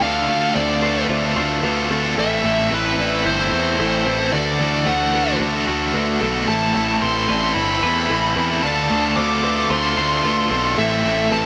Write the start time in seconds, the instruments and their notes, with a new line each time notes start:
Already playing: clean electric guitar A3
0.01 picked electric bass D2, distorted electric guitar D3 A3 D4 F4, felt piano D5, lead electric guitar F5
0.05 distorted electric guitar A4
0.28 picked electric bass D2, distorted electric guitar A3 D4 F4 A4
0.42 distorted electric guitar D4 F4 A4
0.55 picked electric bass D2, distorted electric guitar D3 A3 D4 F4 A4, clean electric guitar C4, felt piano C5, lead electric guitar D5
0.69 distorted electric guitar D4 F4 A4
0.82 distorted electric guitar A3 D4 F4 A4, felt piano B4, clean electric guitar C5
0.95 distorted electric guitar D4 F4 A4
1.09 picked electric bass D2, clean electric guitar F4, felt piano C5
1.23 distorted electric guitar D4 F4 A4
1.36 picked electric bass D2, distorted electric guitar A3 D4 F4 A4, clean electric guitar C5
1.62 picked electric bass D2, distorted electric guitar D3 A3 D4 F4 A4, felt piano B4
1.90 picked electric bass D2, distorted electric guitar A3 D4 F4 A4, clean electric guitar C4, felt piano A4
2.03 distorted electric guitar D4 F4 A4
2.16 picked electric bass A1, distorted electric guitar A2 E3 A3 C4 E4 A4, felt piano A4, lead electric guitar E5
2.44 picked electric bass A1, distorted electric guitar A3 C4 E4 A4
2.58 distorted electric guitar A3 C4 E4 A4
2.71 picked electric bass A1, distorted electric guitar A2 E3 A3 C4 E4 A4, felt piano B4, lead electric guitar B4
2.85 distorted electric guitar A3 C4 E4 A4
2.98 picked electric bass A1, distorted electric guitar A3 C4 E4 A4, felt piano D5
3.12 distorted electric guitar A3 C4 E4 A4
3.25 picked electric bass G1, clean electric guitar E4, lead electric guitar C5
3.39 distorted electric guitar A3 C4 E4 A4
3.52 picked electric bass E2, distorted electric guitar A3 C4 E4 A4
3.78 picked electric bass A1, distorted electric guitar A2 E3 A3 C4 E4 A4, felt piano A4
4.06 picked electric bass A1, distorted electric guitar A3 C4 E4 A4, felt piano B4
4.19 distorted electric guitar A3 C4 E4 A4
4.32 picked electric bass D2, distorted electric guitar D3 A3 D4 F#4 A4, felt piano D5, lead electric guitar D5
4.59 picked electric bass D2, clean electric guitar E3, distorted electric guitar A3 D4 F#4 A4
4.72 distorted electric guitar D4 F#4 A4
4.86 picked electric bass D2, distorted electric guitar D3 A3 D4 F#4 A4, felt piano C5, lead electric guitar F#5
5.00 distorted electric guitar D4 F#4 A4
5.13 distorted electric guitar A3 D4 F#4 A4, felt piano B4
5.27 distorted electric guitar D4 F#4 A4
5.39 picked electric bass D2, clean electric guitar D4, felt piano C5
5.54 distorted electric guitar D4 F#4 A4
5.67 picked electric bass D2, distorted electric guitar A3 D4 F#4 A4
5.93 picked electric bass D2, distorted electric guitar D3 A3 D4 F#4 A4, felt piano B4
6.20 picked electric bass B1, distorted electric guitar A3 D4 F#4 A4, felt piano A4
6.34 distorted electric guitar D4 F#4 A4
6.47 picked electric bass A1, distorted electric guitar A2 E3 A3 C4 E4 A4, felt piano A4, lead electric guitar A5
6.74 picked electric bass A1, distorted electric guitar A3 C4 E4 A4
6.88 distorted electric guitar A3 C4 E4 A4
7.02 picked electric bass A1, distorted electric guitar A2 E3 A3 C4 E4 A4, felt piano B4, lead electric guitar C6
7.15 distorted electric guitar A3 C4 E4 A4
7.28 picked electric bass A1, distorted electric guitar A3 C4 E4 A4, clean electric guitar B4, felt piano D5
7.42 distorted electric guitar A3 C4 E4 A4
7.54 picked electric bass G1, clean electric guitar E4, lead electric guitar B5
7.70 distorted electric guitar A3 C4 E4 A4
7.83 picked electric bass E2, distorted electric guitar A3 C4 E4 A4, clean electric guitar B4
8.09 picked electric bass A1, distorted electric guitar A2 E3 A3 C4 E4, felt piano A4
8.13 distorted electric guitar A4
8.36 picked electric bass E2, distorted electric guitar A3 C4 E4 A4, felt piano B4
8.50 distorted electric guitar A3 C4 E4 A4
8.63 picked electric bass D2, distorted electric guitar D3 A3 D4 F4 A4, felt piano D5, lead electric guitar A5
8.90 picked electric bass D2, distorted electric guitar A3 D4 F4 A4
9.03 distorted electric guitar D4 F4 A4
9.16 picked electric bass D2, distorted electric guitar D3 A3 D4 F4 A4, clean electric guitar C4, felt piano C5, lead electric guitar D6
9.30 distorted electric guitar D4 F4 A4
9.42 distorted electric guitar A3 D4 F4 A4, felt piano B4, clean electric guitar C5
9.57 distorted electric guitar D4 F4 A4
9.70 picked electric bass D2, clean electric guitar F4, felt piano C5, lead electric guitar C6
9.83 distorted electric guitar D4 F4 A4
9.96 picked electric bass D2, distorted electric guitar A3 D4 F4 A4, clean electric guitar C5
10.23 picked electric bass D2, distorted electric guitar D3 A3 D4 F4 A4, felt piano B4
10.50 picked electric bass B1, distorted electric guitar A3 D4 F4 A4, clean electric guitar C4, felt piano A4
10.64 distorted electric guitar D4 F4 A4
10.77 picked electric bass A1, distorted electric guitar A2 E3 A3 C4 E4 A4, felt piano A4, lead electric guitar E5
11.03 picked electric bass A1, distorted electric guitar A3 C4 E4 A4
11.17 distorted electric guitar A3 C4 E4 A4
11.31 picked electric bass A1, distorted electric guitar A2 E3 A3 C4 E4 A4, felt piano B4, lead electric guitar A5